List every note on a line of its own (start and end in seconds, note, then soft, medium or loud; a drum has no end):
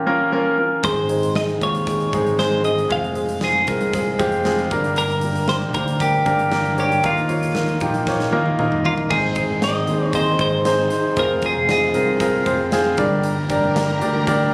0.00 0.85 A#2 medium
0.00 0.06 A#3 loud
0.00 0.07 C#4 medium
0.00 0.07 F4 medium
0.00 0.86 G4 medium
0.00 0.07 A#4 loud
0.06 0.27 A#3 medium
0.06 0.27 C#4 medium
0.06 0.27 F4 medium
0.06 0.27 A#4 loud
0.32 0.53 A#3 loud
0.32 0.53 C#4 medium
0.32 0.53 F4 medium
0.32 0.53 A#4 loud
0.58 0.79 A#3 medium
0.58 0.79 C#4 medium
0.58 0.79 F4 medium
0.58 0.79 A#4 medium
0.83 1.57 G#1 medium
0.83 1.57 G#2 medium
0.83 1.04 G#3 medium
0.83 1.04 C4 medium
0.83 1.05 D#4 medium
0.83 1.05 G#4 medium
0.83 1.36 C5 medium
0.83 kick medium
0.83 closed hi-hat medium
1.08 1.30 G#3 medium
1.08 1.30 C4 medium
1.08 1.30 D#4 medium
1.08 1.30 G#4 medium
1.08 closed hi-hat medium
1.23 closed hi-hat medium
1.35 1.56 G#3 medium
1.35 1.56 C4 medium
1.35 1.57 D#4 medium
1.35 1.57 G#4 medium
1.35 1.43 D#5 medium
1.35 snare medium
1.49 closed hi-hat soft
1.61 2.09 D#2 medium
1.61 1.82 G#3 medium
1.61 1.82 C4 medium
1.61 1.82 D#4 medium
1.61 1.82 F4 medium
1.61 2.39 C#5 medium
1.61 kick medium
1.61 closed hi-hat medium
1.75 closed hi-hat soft
1.87 2.08 G#3 medium
1.87 2.08 C4 medium
1.87 2.09 D#4 medium
1.87 2.08 G#4 medium
1.87 kick medium
1.87 closed hi-hat medium
2.00 closed hi-hat soft
2.13 2.87 G#1 medium
2.13 2.34 G#3 medium
2.13 2.34 C4 medium
2.13 2.34 D#4 medium
2.13 2.34 G#4 medium
2.13 kick medium
2.13 closed hi-hat medium
2.26 closed hi-hat soft
2.39 2.60 G#3 medium
2.39 2.60 C4 medium
2.39 2.60 D#4 medium
2.39 2.60 G#4 medium
2.39 2.65 C5 medium
2.39 snare loud
2.64 2.85 G#3 medium
2.64 2.85 C4 medium
2.64 2.85 D#4 medium
2.64 2.85 G#4 medium
2.64 2.91 D#5 medium
2.64 closed hi-hat medium
2.78 closed hi-hat soft
2.89 3.64 F1 medium
2.89 3.11 G#3 medium
2.89 3.11 C4 medium
2.89 3.11 F4 medium
2.89 3.11 G#4 loud
2.89 3.45 F5 medium
2.89 kick medium
2.89 closed hi-hat medium
3.04 closed hi-hat soft
3.15 3.37 G#3 medium
3.15 3.37 C4 medium
3.15 3.37 F4 medium
3.15 3.37 G#4 medium
3.15 closed hi-hat medium
3.29 closed hi-hat medium
3.41 3.62 G#3 medium
3.41 3.63 C4 medium
3.41 3.63 F4 medium
3.41 3.63 G#4 medium
3.41 4.68 G#4 medium
3.41 snare loud
3.67 4.16 C2 medium
3.67 3.89 G#3 medium
3.67 3.89 C4 medium
3.67 3.89 F4 medium
3.67 3.89 A#4 medium
3.67 kick medium
3.67 closed hi-hat medium
3.81 closed hi-hat soft
3.94 4.15 G#3 medium
3.94 4.15 C4 medium
3.94 4.15 F4 medium
3.94 4.15 G#4 medium
3.94 kick medium
3.94 closed hi-hat medium
4.19 4.68 F1 medium
4.19 4.40 G#3 loud
4.19 4.40 C4 medium
4.19 4.40 F4 medium
4.19 4.40 G4 loud
4.19 kick medium
4.19 closed hi-hat medium
4.32 closed hi-hat soft
4.45 4.66 G#3 loud
4.45 4.66 C4 medium
4.45 4.67 F4 medium
4.45 4.67 G#4 loud
4.45 snare loud
4.58 closed hi-hat soft
4.71 5.75 G1 medium
4.71 5.45 G2 medium
4.71 5.13 A#3 medium
4.71 5.13 D4 medium
4.71 5.14 G4 medium
4.71 5.14 A#4 loud
4.71 kick medium
4.71 closed hi-hat medium
4.84 closed hi-hat soft
4.96 5.49 A#4 loud
4.96 closed hi-hat medium
5.10 closed hi-hat soft
5.21 5.44 A#3 medium
5.21 5.44 D4 medium
5.21 5.44 G4 medium
5.21 5.44 A#4 medium
5.21 closed hi-hat medium
5.35 closed hi-hat soft
5.48 5.69 A#3 medium
5.48 5.69 D4 medium
5.48 5.70 G4 medium
5.48 5.70 A#4 medium
5.48 5.56 C5 medium
5.48 snare medium
5.74 6.23 D2 medium
5.74 5.95 A#3 medium
5.74 5.96 D4 medium
5.74 5.96 G4 medium
5.74 6.01 A#4 medium
5.74 5.96 C5 medium
5.74 kick medium
5.74 closed hi-hat medium
5.88 closed hi-hat soft
5.99 6.21 A#3 medium
5.99 6.21 D4 medium
5.99 6.21 G4 medium
5.99 6.79 G4 medium
5.99 6.21 A#4 medium
5.99 kick medium
5.99 closed hi-hat medium
6.26 7.00 G1 medium
6.26 6.47 A#3 medium
6.26 6.47 D4 medium
6.26 6.47 G4 medium
6.26 6.47 A#4 medium
6.26 kick medium
6.26 closed hi-hat medium
6.39 closed hi-hat soft
6.51 6.73 A#3 medium
6.51 6.73 D4 medium
6.51 6.73 G4 medium
6.51 6.73 A#4 medium
6.51 snare loud
6.65 closed hi-hat soft
6.78 6.99 A#3 medium
6.78 6.99 D4 medium
6.78 6.99 G4 medium
6.78 7.05 G4 medium
6.78 6.99 C#5 medium
6.78 closed hi-hat medium
6.92 closed hi-hat soft
7.03 7.78 D#2 medium
7.03 7.77 D#3 medium
7.03 7.25 A#3 medium
7.03 7.25 D#4 medium
7.03 7.25 F4 medium
7.03 8.56 F4 medium
7.03 7.25 A#4 loud
7.03 kick loud
7.03 closed hi-hat medium
7.17 closed hi-hat soft
7.28 7.50 A#3 medium
7.28 7.50 D#4 medium
7.28 7.50 F4 medium
7.28 7.50 C#5 medium
7.28 closed hi-hat medium
7.43 closed hi-hat medium
7.55 7.76 A#3 medium
7.55 7.76 D#4 medium
7.55 7.77 F4 medium
7.55 7.76 A#4 medium
7.55 snare medium
7.69 closed hi-hat soft
7.80 8.30 A#1 medium
7.80 8.02 A#3 medium
7.80 8.02 D#4 medium
7.80 8.03 F4 medium
7.80 8.03 G4 medium
7.80 kick medium
7.80 closed hi-hat medium
7.94 closed hi-hat soft
8.07 8.28 A#3 medium
8.07 8.28 D#4 medium
8.07 8.29 F4 medium
8.07 8.29 C#5 medium
8.07 kick medium
8.07 snare soft
8.20 snare soft
8.32 9.07 D#2 medium
8.32 8.54 A#3 loud
8.32 8.54 D#4 medium
8.32 8.54 F4 medium
8.32 8.54 A#4 loud
8.32 high tom medium
8.46 high tom medium
8.59 8.80 A#3 medium
8.59 8.80 D#4 medium
8.59 8.80 F4 medium
8.59 8.80 A#4 loud
8.59 mid tom medium
8.72 mid tom medium
8.85 9.06 A#3 medium
8.85 9.06 D#4 medium
8.85 9.06 F4 medium
8.85 8.93 F4 medium
8.85 9.06 A#4 medium
8.85 floor tom medium
8.98 floor tom medium
9.09 9.47 G#1 medium
9.09 9.85 G#2 medium
9.09 12.95 C3 medium
9.09 11.15 D#3 medium
9.09 12.95 G#3 medium
9.09 9.32 C4 medium
9.09 11.15 D#4 medium
9.09 9.32 D#4 medium
9.09 9.64 G#4 medium
9.09 9.32 G#4 medium
9.09 9.32 C5 medium
9.09 kick loud
9.09 crash medium
9.35 9.58 C4 medium
9.35 9.58 D#4 medium
9.35 9.58 G#4 medium
9.35 9.58 C5 medium
9.35 kick medium
9.35 closed hi-hat medium
9.50 9.86 G#1 medium
9.62 9.83 C4 medium
9.62 9.83 D#4 medium
9.62 9.84 G#4 medium
9.62 9.83 C5 medium
9.62 10.15 D#5 medium
9.62 snare loud
9.62 closed hi-hat medium
9.87 10.36 D#2 medium
9.87 10.09 C4 medium
9.87 10.09 D#4 medium
9.87 10.09 G#4 medium
9.87 10.10 C5 medium
9.87 closed hi-hat medium
10.13 10.35 C4 medium
10.13 10.35 D#4 medium
10.13 10.35 G#4 medium
10.13 10.40 C5 loud
10.13 10.36 D#5 medium
10.13 kick medium
10.13 closed hi-hat medium
10.39 10.88 G#1 medium
10.39 10.61 C4 medium
10.39 10.61 D#4 medium
10.39 10.61 G#4 medium
10.39 10.61 C5 medium
10.39 11.19 C5 medium
10.39 kick medium
10.39 closed hi-hat medium
10.65 10.87 C4 medium
10.65 10.87 D#4 medium
10.65 10.87 G#4 medium
10.65 10.87 C5 loud
10.65 snare loud
10.65 closed hi-hat medium
10.90 11.13 C4 medium
10.90 11.13 D#4 medium
10.90 11.13 G#4 medium
10.90 11.13 C5 medium
10.90 snare soft
10.90 closed hi-hat medium
11.17 11.53 F1 medium
11.17 12.96 F3 medium
11.17 11.38 C4 medium
11.17 12.96 F4 medium
11.17 11.38 F4 medium
11.17 11.38 G#4 medium
11.17 11.45 A#4 medium
11.17 11.39 C5 loud
11.17 kick loud
11.17 closed hi-hat medium
11.42 11.65 C4 medium
11.42 11.65 F4 medium
11.42 11.65 G#4 medium
11.42 11.65 C5 medium
11.42 kick medium
11.42 closed hi-hat medium
11.46 11.70 G#4 medium
11.56 11.92 F1 medium
11.69 11.91 C4 medium
11.69 11.90 F4 medium
11.69 11.91 G#4 medium
11.69 12.70 G#4 medium
11.69 11.91 D#5 medium
11.69 snare loud
11.69 closed hi-hat medium
11.94 12.48 C2 medium
11.94 12.16 C4 medium
11.94 12.16 F4 medium
11.94 12.16 G#4 medium
11.94 12.16 A#4 medium
11.94 closed hi-hat medium
12.20 12.42 C4 medium
12.20 12.42 F4 medium
12.20 12.42 G#4 medium
12.20 12.42 A#4 loud
12.20 kick medium
12.20 closed hi-hat medium
12.46 12.95 F1 medium
12.46 12.67 C4 medium
12.46 12.68 F4 medium
12.46 12.68 G#4 medium
12.46 12.68 C5 medium
12.46 kick medium
12.46 closed hi-hat medium
12.72 12.94 C4 loud
12.72 12.94 F4 loud
12.72 12.94 G#4 loud
12.72 12.94 C5 loud
12.72 snare loud
12.72 closed hi-hat medium
12.97 13.59 G1 loud
12.97 13.72 G2 medium
12.97 14.54 D3 medium
12.97 14.54 G3 medium
12.97 14.54 A#3 medium
12.97 13.40 D4 medium
12.97 13.40 G4 medium
12.97 14.54 G4 medium
12.97 13.40 A#4 medium
12.97 13.41 D5 loud
12.97 kick loud
12.97 closed hi-hat medium
13.23 14.54 A#4 medium
13.23 14.54 A#5 loud
13.23 closed hi-hat medium
13.50 13.71 D4 medium
13.50 13.71 G4 medium
13.50 13.71 A#4 medium
13.50 13.71 D5 medium
13.50 kick medium
13.50 closed hi-hat medium
13.64 14.00 G1 loud
13.75 13.97 D4 medium
13.75 13.97 G4 medium
13.75 13.97 A#4 medium
13.75 13.97 D5 medium
13.75 snare loud
13.75 closed hi-hat medium
14.01 14.50 D2 medium
14.01 14.23 D4 medium
14.01 14.23 G4 medium
14.01 14.23 A#4 medium
14.01 14.23 D5 loud
14.01 closed hi-hat medium
14.27 14.49 D4 loud
14.27 14.49 G4 medium
14.27 14.49 A#4 loud
14.27 14.49 D5 loud
14.27 kick medium
14.27 closed hi-hat medium